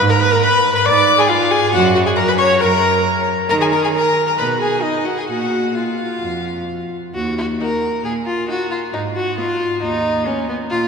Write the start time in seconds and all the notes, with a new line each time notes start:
Already playing: B4
0.00 G#2
0.09 A#4 A#5
0.19 B4 B5
0.31 A#4 A#5
0.41 B4 B5
0.75 B4 B5
0.86 G#2 D5 D6
1.18 G#4 G#5
1.29 F4 F5
1.51 G#4 G#5
1.72 F#2 F#4 F#5
1.94 F#4 F#5
2.06 G#4 G#5
2.16 A#4 A#5
2.28 B4 B5
2.38 C#5 C#6
2.60 F#2 A#4 A#5
3.49 D#3 A#4 A#5
3.60 G#4 G#5
3.72 A#4 A#5
3.83 G#4 G#5
3.94 A#4 A#5
4.27 A#4 A#5
4.37 B2 B4 B5
4.59 G#4 G#5
4.82 D#4 D#5
5.04 F#4 F#5
5.16 G#4 G#5
5.28 A#2 F#4 F#5
5.75 F4 F5
6.21 F2
7.14 D#2 F#4
7.37 F#4
7.60 D#4 A#4 F#5
8.03 A#2 G#4
8.26 F4
8.48 D#4 F#4 F#5
8.71 F4
8.92 G#2 D#4
9.16 F#4
9.37 B3 F4 D#5
9.82 D#2 D#4
10.26 B3 C#4 D#5
10.49 B3
10.70 A#2 F4